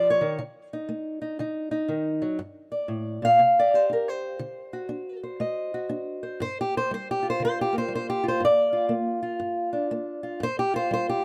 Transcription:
steel-string acoustic guitar
Already playing: F3 G4
0.10 C#5
0.21 D#3
0.38 D3
0.73 D#4
0.89 A3
1.22 D#4
1.39 D3 D#4
1.71 D#4
1.88 D#3
2.22 F#3
2.39 G2
2.72 D5
2.88 A2
3.22 A#2 F5
3.39 C3
3.59 D5
3.74 G4 C5
3.90 D#4 A#4
4.08 C5
4.39 D3
4.73 F#4
4.89 D4
5.23 C5
5.40 A3 D#5
5.74 F#4
5.89 D4
6.23 C5
6.40 G2 C5
6.61 G4
6.77 C5
6.91 G3 C5
7.11 G4
7.23 F4
7.30 C5
7.40 D3
7.45 C5
7.61 G4
7.73 A#3
7.78 C5
7.88 G3
7.95 C5
8.10 G4
8.24 F4
8.28 C5
8.40 G2
8.45 D5
8.73 F4
8.89 A#3
9.23 F4
9.40 G2
9.73 D4
9.91 A#3
10.23 F4
10.40 G2 C5
10.59 G4
10.74 F4 C5
10.91 G3 C5
11.09 G4

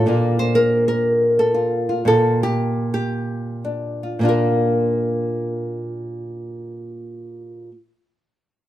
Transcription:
nylon-string guitar
Already playing: A4
0.06 A#2 A#3 D4 F4
0.39 C5
0.55 A#4
0.88 A#4
1.39 A4
1.54 F4
1.89 F4
2.05 A#2 A4
2.43 G4
2.94 G4
3.65 D4
4.03 F4
4.19 A#2 A#3 D4
4.25 F4 A#4

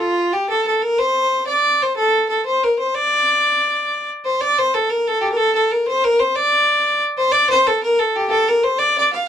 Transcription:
fiddle
Already playing: F4
0.33 G4
0.49 A4
0.67 A4
0.83 A#4
0.99 C5
1.47 D5
1.83 C5
1.96 A4
2.29 A4
2.45 C5
2.63 A#4
2.79 C5
2.94 D5
4.25 C5
4.41 D5
4.58 C5
4.74 A4
4.90 A#4
5.08 A4
5.21 G4
5.32 A#4
5.37 A4
5.55 A4
5.71 A#4
5.88 C5
6.04 A#4
6.20 C5
6.35 D5
7.17 C5
7.32 D5
7.50 C5
7.67 A4
7.83 A#4
7.99 A4
8.16 G4
8.26 G4 A4
8.48 A#4
8.64 C5
8.79 D5
8.98 D5
9.13 F5

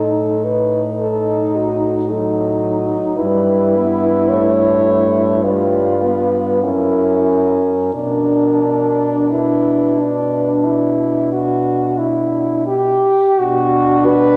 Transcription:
french horn
Already playing: A2 D#4 A4
0.44 B4
1.00 D#4 A4
1.55 F#4
2.09 F#3 D#4 A4
3.17 G2 G3 E4 B4
3.76 B3
4.29 A3 C#5
5.43 G3 F4 B4
6.04 B3
6.63 F#2 C#4 E4 A#4
7.94 B2 D4 A#4
9.31 E4 B4
9.99 D4
10.65 E4
11.33 F#4
11.98 E4
12.67 G4
13.38 B2 D4 F#4
14.05 B4

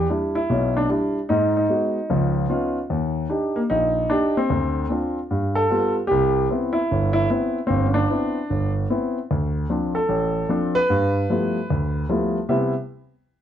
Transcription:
grand piano
0.09 G3 D4 E4
0.35 E4
0.50 B1 B2
0.77 D4
0.90 G3 D4 E4
1.29 G#2 D#4
1.57 D#4
1.69 G#3 B3 F#4
2.10 C#2 F3
2.49 B3 C#4 D#4 F4
2.90 D#2
3.29 D4 D#4 G4
3.56 A#3
3.70 A#1 D#4
4.10 D4 D#4 G4
4.37 C4
4.50 D2 D3
4.90 C4 D4 F4
5.31 G2
5.55 A4
5.70 G3 B3 F4
6.07 C2 G4
6.50 B3 C4 E4
6.73 E4
6.91 G1
7.13 E4
7.30 B3 C4 E4
7.67 G1 C4
7.86 C#4
7.94 D4
8.10 B3 C4 E4
8.50 G1
8.90 B3 C4 E4
9.31 D2
9.70 F3 C4 D4
9.95 A4
10.09 A1
10.49 F3 C4 D4
10.75 B4
10.90 G2
11.30 F3 G3 A3 B3 E4
11.70 D2
12.09 F3 G3 A3 B3 E4
12.49 C3 G3 B3 E4 E5

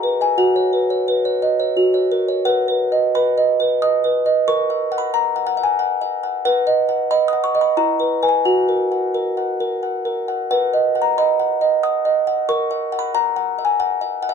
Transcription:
music box
Already playing: G#4 E5 A#5
0.03 B4
0.21 E5 G#5
0.38 F#4 F#5
0.56 C#5
0.73 B4
0.90 C#5
1.08 B4
1.25 C#5
1.42 D#5
1.59 C#5
1.77 F#4
1.94 C#5
2.11 A#4
2.28 C#5
2.45 B4 F#5
2.68 B4
2.92 D#5
3.15 B4 B5
3.38 D#5
3.60 B4
3.82 D#5 D#6
4.04 B4
4.26 D#5
4.48 A#4 C#6
4.70 E5
4.92 F#5
4.98 B5
5.14 E5 A#5
5.36 F#5
5.47 F#5
5.57 E5
5.64 G#5
5.79 F#5
6.01 E5
6.23 F#5
6.45 B4 F#5
6.67 D#5
6.89 F#5
7.11 D#5 B5
7.28 D#6
7.33 F#5
7.44 C#6
7.55 D#5
7.61 B5
7.77 E4 A#5
8.00 B4
8.22 B4 G#5
8.29 G#5
8.45 F#4 F#5
8.69 A#4
8.92 F#5
9.14 A#4
9.37 F#5
9.60 A#4
9.83 F#5
10.05 A#4
10.28 F#5
10.51 B4 F#5
10.73 D#5
10.95 F#5
11.02 A#5
11.18 D#5 B5
11.39 F#5
11.61 D#5
11.83 F#5 D#6
12.05 D#5
12.27 F#5
12.49 A#4 C#6
12.71 E5
12.92 F#5
12.99 B5
13.15 E5 A#5
13.36 F#5
13.59 E5
13.65 G#5
13.80 F#5
14.01 E5
14.22 F#5
14.29 E5

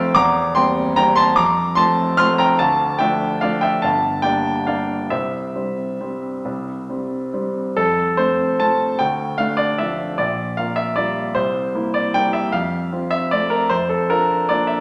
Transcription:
grand piano
Already playing: F2 F3 A3 C4 C5 E5 F5 G5 A5
0.15 E2 A#5 D6
0.55 G3 A#3 C4 G5 C6
0.96 G3 A#3 C4 G5 A#5
1.16 A5 C6
1.36 F2 A#5 D6
1.75 F3 A3 C4 A5 C6
2.17 F3 A3 C4 C6 F6
2.38 G5 A#5
2.59 D2 F5 A5
2.99 F3 A3 D4 E5 G5
3.41 F3 A3 D4 D5 F5
3.61 E5 G5
3.82 G1 F5 A5
4.22 G3 A#3 D4 D5 G5
4.67 G3 A#3 D4 D5 F5
5.10 C2 C5 E5
5.55 G3 C4
6.01 G3 C4
6.45 C2
6.89 G3 C4
7.34 G3 C4
7.77 F2 A4
8.17 A3 C4 C5
8.60 F3 A3 C4 A5
8.99 D2 G5
9.38 A3 D4 F5
9.57 D5
9.78 F3 A3 D4 E5
10.18 A#1 D5
10.57 A#3 F4 F5
10.76 E5
10.96 G3 A#3 F4 D5
11.35 C2 C5
11.75 A#3 E4
11.94 D5
12.14 G3 A#3 E4 G5
12.33 E5
12.52 F2 F5
12.92 C4 F4
13.11 E5
13.31 A3 C4 F4 D5
13.50 A#4
13.69 F2 C5
13.89 A4
14.10 D4 F4 A#4
14.49 A#3 D4 F4 D5
14.67 E5

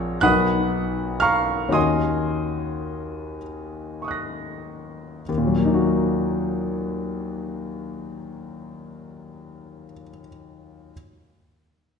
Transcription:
grand piano
Already playing: A#1 C4 F4 G#4 A#4 C#5 F#5 A#5 C#6
0.21 B1 B3 D#4 F#4 A#4 F#5 B5 D#6 F#6
1.20 F5 A#5 C#6 F6
1.68 D#2 C#4 D#4 F#4 A#4
1.72 D#5 G#5 C6 D#6
4.02 C#6 D#6
4.08 F#6 A#6
5.29 D#2
5.37 A#2
5.47 F#3
5.56 A#3
5.65 D#4
5.74 F#4

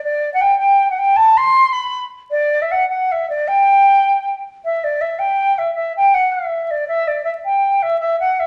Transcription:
flute
0.04 D5
0.34 F#5
0.41 G5
0.59 G5
0.90 F#5
0.99 G5
1.16 A5
1.37 C6
1.73 B5
2.31 D5
2.62 E5
2.71 F#5
2.89 F#5
3.12 E5
3.29 D5
3.48 G5
4.65 E5
4.84 D5
5.01 E5
5.19 G5
5.58 E5
5.74 E5
5.97 G5
6.14 F#5
6.32 E5
6.71 D5
6.88 E5
7.07 D5
7.25 E5
7.45 G5
7.83 E5
8.00 E5
8.20 F#5
8.40 E5

